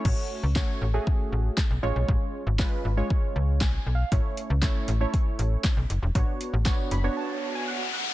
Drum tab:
CC |x-------|--------|--------|--------|
HH |--------|--------|xxxxxxxx|xxxx----|
CP |--x---x-|--x---x-|--x---x-|--x-----|
SD |--o---o-|--o---o-|--o---o-|--o-----|
BD |o-o-o-o-|o-o-o-o-|o-o-o-o-|o-o-----|